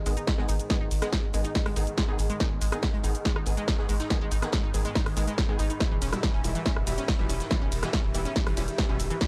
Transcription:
Already playing: G#2 D#3 G#4 D#5
0.01 B5
0.06 G#1 D#3 G#3 B3 G#4, closed hi-hat, open hi-hat, shaker
0.17 D#4, closed hi-hat, shaker
0.27 kick, snare, closed hi-hat, shaker
0.38 G#1 D#3 G#3 B3 G#4, snare
0.49 G#1 D#4, closed hi-hat, open hi-hat, shaker
0.59 closed hi-hat, shaker
0.70 D#3 G#3 B3 G#4, kick, snare, closed hi-hat, shaker
0.81 G#1 D#4
0.91 G#1, closed hi-hat, open hi-hat, shaker
1.02 D#3 G#3 B3 G#4, cross-stick, snare, closed hi-hat, shaker
1.12 D#4, kick, snare, closed hi-hat, shaker
1.23 G#1
1.34 G#1 D#3 G#3 B3 G#4, closed hi-hat, open hi-hat, shaker
1.44 D#4, closed hi-hat, shaker
1.55 kick, snare, closed hi-hat, shaker
1.66 G#1 G#3, cross-stick, closed hi-hat, open hi-hat
1.76 G#1 D#3 B3 D#4 G#4, closed hi-hat, open hi-hat, shaker
1.87 closed hi-hat, shaker
1.97 G#3, kick, snare, closed hi-hat, shaker
2.08 G#1 D#3 B3 D#4 G#4
2.19 G#1, closed hi-hat, open hi-hat, shaker
2.30 G#3, closed hi-hat, shaker
2.40 D#3 B3 D#4 G#4, kick, snare, closed hi-hat, shaker
2.51 G#1
2.61 G#1 G#3, closed hi-hat, open hi-hat, shaker
2.72 D#3 B3 D#4 G#4, cross-stick, closed hi-hat, shaker
2.83 kick, snare, closed hi-hat, shaker
2.94 G#1 G#3, closed hi-hat
3.03 G#1 D#3 B3 D#4 G#4, closed hi-hat, open hi-hat, shaker
3.15 closed hi-hat, shaker
3.25 G#3, kick, snare, closed hi-hat, shaker
3.36 G#1 D#4, cross-stick
3.46 G#1 D#3 B3 G#4, closed hi-hat, open hi-hat, shaker
3.57 G#3, closed hi-hat, shaker
3.67 D#4, kick, snare, closed hi-hat, shaker
3.79 G#1 D#3 B3 G#4, snare
3.89 G#1 G#3, closed hi-hat, open hi-hat, shaker
4.00 D#4, snare, closed hi-hat, shaker
4.10 D#3 B3 G#4, kick, snare, closed hi-hat, shaker
4.21 G#1 G#3
4.31 G#1 D#4, closed hi-hat, open hi-hat, shaker
4.42 D#3 B3 G#4, cross-stick, snare, closed hi-hat, shaker
4.52 G#3, kick, snare, closed hi-hat, shaker
4.64 G#1 D#4
4.74 G#1 D#3 B3 G#4, closed hi-hat, open hi-hat, shaker
4.85 G#3, closed hi-hat, shaker
4.95 D#4, kick, snare, closed hi-hat, shaker
5.06 G#1, cross-stick, closed hi-hat, open hi-hat
5.17 G#1 D#3 G#3 B3 G#4, closed hi-hat, open hi-hat, shaker
5.28 G#3, closed hi-hat, shaker
5.38 kick, snare, closed hi-hat, shaker
5.49 G#1 D#3 G#3 B3 G#4
5.59 G#1 D#4, closed hi-hat, open hi-hat, shaker
5.70 D#4, closed hi-hat, shaker
5.80 B2 G3 E4 G4, kick, snare, closed hi-hat, shaker
5.88 E1 E3 E5
6.02 E1 C#4, closed hi-hat, open hi-hat, ride, shaker
6.13 B2 G3 E4, cross-stick, closed hi-hat, shaker
6.23 E3, kick, snare, closed hi-hat, shaker
6.34 E1 C#4, closed hi-hat
6.44 E1 B2 G3 E4, closed hi-hat, open hi-hat, ride, shaker
6.55 E3, closed hi-hat, shaker
6.65 C#4, kick, snare, closed hi-hat, shaker
6.76 E1, cross-stick
6.87 E1 B2 E3 G3 E4, closed hi-hat, open hi-hat, ride, shaker
6.98 C#4, closed hi-hat, shaker
7.08 kick, snare, closed hi-hat, shaker
7.19 E1 B2 E3 G3 E4, snare
7.29 E1 C#4, closed hi-hat, open hi-hat, ride, shaker
7.40 snare, closed hi-hat, shaker
7.50 B2 E3 G3 E4, kick, snare, closed hi-hat, shaker
7.62 E1 C#4
7.72 E1, closed hi-hat, open hi-hat, ride, shaker
7.83 B2 E3 G3 E4, cross-stick, snare, closed hi-hat, shaker
7.93 C#4, kick, snare, closed hi-hat, shaker
8.04 E1
8.14 E1 B2 E3 G3 E4, closed hi-hat, open hi-hat, ride, shaker
8.25 C#4, closed hi-hat, shaker
8.36 kick, snare, closed hi-hat, shaker
8.46 E1 E3, cross-stick, closed hi-hat, open hi-hat
8.57 E1 B2 G3 C#4 E4, closed hi-hat, open hi-hat, ride, shaker
8.68 closed hi-hat, shaker
8.78 E3, kick, snare, closed hi-hat, shaker
8.89 E1 B2 G3 C#4 E4
9.00 E1, closed hi-hat, open hi-hat, ride, shaker
9.10 E3, closed hi-hat, shaker
9.21 B2 G3 C#4 E4, kick, snare, closed hi-hat, shaker

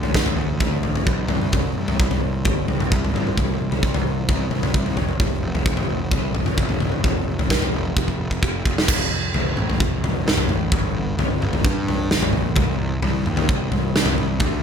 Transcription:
Already playing: D2
0.03 floor tom
0.14 D2, kick, snare
0.26 floor tom, mid tom
0.36 D2
0.60 D2, kick, floor tom
0.83 D2, floor tom
0.96 floor tom
1.07 B1, kick
1.28 C2, floor tom, mid tom
1.41 mid tom
1.53 C2, kick, floor tom
1.77 C2
1.88 floor tom
2.00 C2, kick
2.11 floor tom
2.23 C2
2.45 G1, kick, floor tom
2.68 C2, floor tom
2.80 floor tom, mid tom
2.92 C2, kick
3.05 floor tom
3.13 C2, floor tom
3.27 mid tom
3.37 C2, kick, floor tom
3.60 C2
3.72 floor tom
3.83 C2, kick
3.94 floor tom
4.05 C2
4.29 C2, kick, floor tom
4.50 C2, floor tom
4.63 floor tom, mid tom
4.74 C2, kick
4.86 floor tom
4.95 F1, floor tom
5.09 mid tom
5.20 F1, kick, floor tom
5.42 F1
5.55 floor tom
5.66 F1, kick
5.77 floor tom
5.89 F1
6.11 C2, kick, floor tom
6.34 F1, floor tom
6.46 floor tom, mid tom
6.57 F1, kick
6.69 floor tom
6.80 F1, floor tom
6.92 mid tom
7.04 F1, kick, floor tom
7.27 F1
7.39 floor tom
7.50 F1, kick, snare
7.62 floor tom, mid tom
7.73 F1
7.96 F1, kick
8.08 kick
8.20 F1
8.31 kick
8.43 F1, kick
8.66 F1, kick
8.78 snare
8.88 F1, kick, floor tom, crash
9.12 F1
9.34 F1, floor tom
9.57 A1, mid tom
9.70 floor tom
9.80 F1, kick
10.02 F1, floor tom
10.26 F1, snare
10.37 floor tom, mid tom
10.49 A1, mid tom
10.72 G1, kick, floor tom
10.94 G1
11.17 G1, floor tom
11.42 G1, mid tom
11.53 floor tom
11.64 G2, kick
11.88 floor tom
12.11 G1, snare
12.22 floor tom, mid tom
12.33 A#1, mid tom
12.56 C2, kick, floor tom
12.78 C2
13.02 C2, floor tom
13.26 D#2, mid tom
13.37 floor tom
13.49 C2, kick
13.72 C2, floor tom
13.96 C2, snare
14.06 floor tom, mid tom
14.18 C2, mid tom
14.40 D2, kick, floor tom

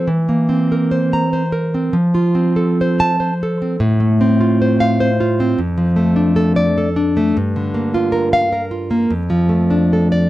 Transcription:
0.07 E3
0.29 A#3
0.49 C4
0.72 A#4
0.91 C5
1.13 A#5
1.33 C5
1.52 A#4
1.74 C4
1.93 F3
2.15 F4
2.35 C4
2.56 A4
2.81 C5
3.00 A5
3.20 C5
3.43 A4
3.62 C4
3.80 A2
4.00 A3
4.21 C4
4.41 F4
4.62 C5
4.80 F5
5.00 C5
5.20 F4
5.40 C4
5.58 F2
5.78 F3
5.96 A3
6.16 D4
6.36 A4
6.56 D5
6.78 A4
6.96 D4
7.17 A3
7.37 G2
7.56 D3
7.74 A#3
7.94 F4
8.12 A#4
8.33 F5
8.53 A#4
8.71 F4
8.91 A#3
9.11 F2
9.30 F3
9.49 A3
9.70 D4
9.93 A4
10.12 D5

